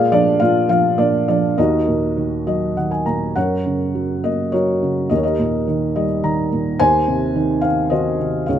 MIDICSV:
0, 0, Header, 1, 2, 480
1, 0, Start_track
1, 0, Key_signature, -6, "minor"
1, 0, Tempo, 585938
1, 1289, Time_signature, 3, 2, 24, 8
1, 2751, Key_signature, 6, "major"
1, 4183, Tempo, 562852
1, 7156, End_track
2, 0, Start_track
2, 0, Title_t, "Felt piano"
2, 0, Program_c, 0, 0
2, 0, Note_on_c, 0, 46, 68
2, 0, Note_on_c, 0, 65, 67
2, 0, Note_on_c, 0, 68, 70
2, 0, Note_on_c, 0, 74, 68
2, 0, Note_on_c, 0, 77, 99
2, 12, Control_c, 0, 64, 127
2, 85, Note_off_c, 0, 74, 0
2, 87, Note_off_c, 0, 65, 0
2, 87, Note_off_c, 0, 68, 0
2, 97, Note_on_c, 0, 53, 55
2, 98, Note_on_c, 0, 74, 87
2, 112, Note_on_c, 0, 62, 70
2, 320, Note_off_c, 0, 46, 0
2, 322, Note_off_c, 0, 62, 0
2, 324, Note_off_c, 0, 77, 0
2, 324, Note_on_c, 0, 77, 86
2, 332, Note_on_c, 0, 46, 57
2, 337, Note_off_c, 0, 74, 0
2, 340, Note_on_c, 0, 65, 71
2, 552, Note_off_c, 0, 53, 0
2, 555, Note_off_c, 0, 65, 0
2, 555, Note_off_c, 0, 77, 0
2, 565, Note_on_c, 0, 53, 54
2, 567, Note_on_c, 0, 77, 84
2, 582, Note_on_c, 0, 65, 67
2, 791, Note_off_c, 0, 77, 0
2, 792, Note_off_c, 0, 46, 0
2, 798, Note_off_c, 0, 65, 0
2, 802, Note_on_c, 0, 74, 80
2, 804, Note_on_c, 0, 46, 51
2, 816, Note_on_c, 0, 62, 65
2, 1037, Note_off_c, 0, 62, 0
2, 1038, Note_off_c, 0, 74, 0
2, 1041, Note_off_c, 0, 53, 0
2, 1051, Note_on_c, 0, 74, 74
2, 1054, Note_on_c, 0, 53, 48
2, 1066, Note_on_c, 0, 62, 60
2, 1273, Note_off_c, 0, 46, 0
2, 1281, Note_off_c, 0, 62, 0
2, 1284, Note_off_c, 0, 53, 0
2, 1292, Note_on_c, 0, 75, 75
2, 1294, Note_on_c, 0, 39, 57
2, 1297, Note_off_c, 0, 74, 0
2, 1299, Control_c, 0, 64, 0
2, 1301, Note_on_c, 0, 70, 53
2, 1302, Note_on_c, 0, 66, 51
2, 1304, Note_on_c, 0, 63, 51
2, 1449, Control_c, 0, 64, 127
2, 1536, Note_on_c, 0, 46, 44
2, 1779, Note_on_c, 0, 51, 47
2, 2010, Note_off_c, 0, 75, 0
2, 2022, Note_on_c, 0, 75, 60
2, 2023, Note_on_c, 0, 54, 47
2, 2248, Note_off_c, 0, 75, 0
2, 2255, Note_off_c, 0, 51, 0
2, 2267, Note_on_c, 0, 51, 40
2, 2270, Note_on_c, 0, 78, 50
2, 2381, Note_off_c, 0, 78, 0
2, 2386, Note_on_c, 0, 80, 49
2, 2481, Note_off_c, 0, 70, 0
2, 2482, Note_off_c, 0, 46, 0
2, 2482, Note_off_c, 0, 66, 0
2, 2483, Note_off_c, 0, 63, 0
2, 2499, Note_off_c, 0, 80, 0
2, 2505, Note_on_c, 0, 82, 48
2, 2508, Note_on_c, 0, 46, 38
2, 2721, Note_off_c, 0, 39, 0
2, 2732, Note_off_c, 0, 54, 0
2, 2733, Note_off_c, 0, 82, 0
2, 2739, Note_off_c, 0, 51, 0
2, 2744, Note_off_c, 0, 46, 0
2, 2749, Note_on_c, 0, 78, 69
2, 2753, Note_on_c, 0, 42, 47
2, 2756, Note_on_c, 0, 70, 51
2, 2756, Note_on_c, 0, 73, 53
2, 2762, Control_c, 0, 64, 0
2, 2896, Control_c, 0, 64, 127
2, 2999, Note_on_c, 0, 49, 39
2, 3235, Note_on_c, 0, 54, 40
2, 3439, Note_off_c, 0, 70, 0
2, 3439, Note_off_c, 0, 73, 0
2, 3471, Note_on_c, 0, 75, 62
2, 3473, Note_on_c, 0, 58, 45
2, 3490, Note_off_c, 0, 78, 0
2, 3702, Note_off_c, 0, 54, 0
2, 3703, Note_on_c, 0, 73, 66
2, 3714, Note_on_c, 0, 54, 46
2, 3716, Note_off_c, 0, 75, 0
2, 3718, Note_on_c, 0, 70, 43
2, 3719, Note_on_c, 0, 66, 48
2, 3922, Note_off_c, 0, 49, 0
2, 3953, Note_on_c, 0, 49, 42
2, 4147, Note_off_c, 0, 73, 0
2, 4150, Note_off_c, 0, 42, 0
2, 4154, Note_off_c, 0, 70, 0
2, 4155, Note_off_c, 0, 66, 0
2, 4163, Note_off_c, 0, 58, 0
2, 4171, Note_off_c, 0, 54, 0
2, 4174, Note_on_c, 0, 75, 62
2, 4178, Note_off_c, 0, 49, 0
2, 4183, Note_on_c, 0, 39, 52
2, 4191, Note_on_c, 0, 67, 46
2, 4193, Control_c, 0, 64, 0
2, 4195, Note_on_c, 0, 70, 42
2, 4232, Note_off_c, 0, 75, 0
2, 4235, Note_on_c, 0, 73, 53
2, 4291, Note_on_c, 0, 75, 62
2, 4296, Note_off_c, 0, 73, 0
2, 4298, Note_off_c, 0, 67, 0
2, 4298, Note_off_c, 0, 70, 0
2, 4310, Note_on_c, 0, 67, 44
2, 4311, Note_on_c, 0, 70, 45
2, 4366, Control_c, 0, 64, 127
2, 4426, Note_on_c, 0, 46, 42
2, 4635, Note_off_c, 0, 75, 0
2, 4668, Note_on_c, 0, 51, 48
2, 4908, Note_on_c, 0, 75, 59
2, 4909, Note_on_c, 0, 55, 50
2, 4991, Note_off_c, 0, 67, 0
2, 4991, Note_off_c, 0, 70, 0
2, 5129, Note_off_c, 0, 75, 0
2, 5134, Note_off_c, 0, 51, 0
2, 5147, Note_on_c, 0, 51, 51
2, 5148, Note_on_c, 0, 82, 58
2, 5355, Note_off_c, 0, 46, 0
2, 5390, Note_on_c, 0, 46, 44
2, 5588, Note_off_c, 0, 39, 0
2, 5591, Note_off_c, 0, 82, 0
2, 5603, Note_off_c, 0, 55, 0
2, 5610, Note_off_c, 0, 51, 0
2, 5618, Note_off_c, 0, 46, 0
2, 5623, Note_on_c, 0, 80, 94
2, 5626, Note_on_c, 0, 72, 70
2, 5629, Note_on_c, 0, 39, 61
2, 5634, Control_c, 0, 64, 0
2, 5766, Control_c, 0, 64, 127
2, 5866, Note_on_c, 0, 48, 52
2, 6101, Note_on_c, 0, 51, 52
2, 6307, Note_off_c, 0, 72, 0
2, 6322, Note_on_c, 0, 77, 72
2, 6345, Note_on_c, 0, 60, 50
2, 6361, Note_off_c, 0, 80, 0
2, 6564, Note_on_c, 0, 75, 75
2, 6566, Note_off_c, 0, 51, 0
2, 6577, Note_off_c, 0, 77, 0
2, 6577, Note_on_c, 0, 72, 52
2, 6579, Note_on_c, 0, 51, 47
2, 6580, Note_on_c, 0, 66, 53
2, 6792, Note_off_c, 0, 48, 0
2, 6817, Note_on_c, 0, 48, 45
2, 7019, Note_off_c, 0, 75, 0
2, 7026, Note_off_c, 0, 72, 0
2, 7027, Note_off_c, 0, 66, 0
2, 7030, Note_off_c, 0, 39, 0
2, 7042, Note_off_c, 0, 60, 0
2, 7046, Note_off_c, 0, 51, 0
2, 7046, Note_on_c, 0, 77, 59
2, 7053, Note_off_c, 0, 48, 0
2, 7061, Note_on_c, 0, 68, 47
2, 7064, Note_on_c, 0, 73, 44
2, 7066, Note_on_c, 0, 37, 56
2, 7071, Control_c, 0, 64, 0
2, 7156, Note_off_c, 0, 37, 0
2, 7156, Note_off_c, 0, 68, 0
2, 7156, Note_off_c, 0, 73, 0
2, 7156, Note_off_c, 0, 77, 0
2, 7156, End_track
0, 0, End_of_file